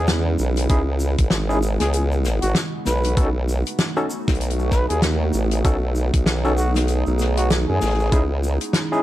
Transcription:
Already playing: wobble bass E2, ambient pad C#3 G#3 C#4 E4
0.07 snare, closed hi-hat, shaker
0.39 wobble bass B1, shaker
0.56 closed hi-hat, shaker
0.69 wobble bass C#2, ambient pad B3, tine electric piano C#4 D#4 E4 G#4, kick, closed hi-hat, shaker
1.00 shaker
1.18 wobble bass G#1, kick, closed hi-hat, shaker
1.30 snare, closed hi-hat, shaker
1.49 tine electric piano C#4 D#4 E4 G#4, shaker
1.62 shaker
1.80 wobble bass C#2, trumpet G#4, snare, closed hi-hat, shaker
1.93 trumpet G#4, closed hi-hat, shaker
2.12 shaker
2.25 snare, shaker
2.42 wobble bass G#1, trumpet F#4, closed hi-hat, shaker
2.55 snare, closed hi-hat, shaker
2.85 wobble bass B1, trumpet B4, snare, shaker
3.04 closed hi-hat, shaker
3.17 wobble bass B1, ambient pad A3 B3 D#4 F#4, tine electric piano C#4 D#4 F#4 A4, kick, closed hi-hat, shaker
3.49 shaker
3.66 closed hi-hat, shaker
3.78 snare, closed hi-hat, shaker
3.97 tine electric piano C#4 D#4 F#4 A4, shaker
4.10 shaker
4.28 wobble bass B1, kick, snare, closed hi-hat, shaker
4.35 closed hi-hat
4.41 closed hi-hat, shaker
4.50 closed hi-hat
4.59 shaker
4.71 trumpet B4, kick, snare, shaker
4.89 wobble bass D#2, trumpet G#4, closed hi-hat, shaker
5.02 snare, closed hi-hat, shaker
5.33 wobble bass A1, shaker
5.51 closed hi-hat, shaker
5.64 wobble bass B1, tine electric piano C#4 D#4 F#4 A4, ambient pad G#4, kick, closed hi-hat, shaker
5.95 shaker
6.13 wobble bass B1, kick, closed hi-hat, shaker
6.26 snare, closed hi-hat, shaker
6.45 tine electric piano C#4 D#4 F#4 A4, shaker
6.57 trumpet F#4, shaker
6.75 snare, closed hi-hat, shaker
6.88 closed hi-hat, shaker
7.06 wobble bass B1, shaker
7.19 snare, shaker
7.37 trumpet F#4, closed hi-hat, shaker
7.50 snare, closed hi-hat, shaker
7.68 wobble bass F#2, trumpet G#4
7.80 wobble bass A1, snare, shaker
7.85 snare
7.89 snare
7.94 snare
7.99 snare, shaker
8.02 snare
8.05 snare
8.08 snare
8.12 wobble bass C#2, ambient pad G#3 C#4 E4, tine electric piano C#4 D#4 E4 G#4, kick, closed hi-hat, shaker
8.43 shaker
8.61 closed hi-hat, shaker
8.73 snare, closed hi-hat, shaker
8.92 tine electric piano C#4 D#4 E4 G#4, shaker

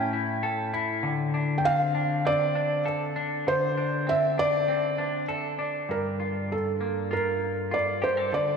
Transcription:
Already playing: clean electric guitar A2 C#4 E4 A4, felt piano G5
0.13 clean electric guitar E4
0.43 clean electric guitar A4
0.74 clean electric guitar E4
1.03 clean electric guitar D3
1.34 clean electric guitar D4
1.58 felt piano G5
1.65 clean electric guitar C4, felt piano F5
1.95 clean electric guitar D4
2.25 clean electric guitar C4, felt piano D5
2.55 clean electric guitar D4
2.86 clean electric guitar A4
3.16 clean electric guitar D4
3.47 clean electric guitar D3, felt piano C5
3.77 clean electric guitar D4
4.07 clean electric guitar C4, felt piano E5
4.38 clean electric guitar D4, felt piano D5
4.68 clean electric guitar C4
4.98 clean electric guitar D4
5.28 clean electric guitar A4
5.59 clean electric guitar D4
5.89 clean electric guitar G2, felt piano A#4
6.20 clean electric guitar F4
6.52 felt piano A4
6.81 clean electric guitar A#3
7.11 clean electric guitar F4, felt piano A#4
7.71 clean electric guitar F4, felt piano D5
8.02 clean electric guitar G4, felt piano C5
8.17 clean electric guitar A4
8.32 clean electric guitar D3, felt piano D5

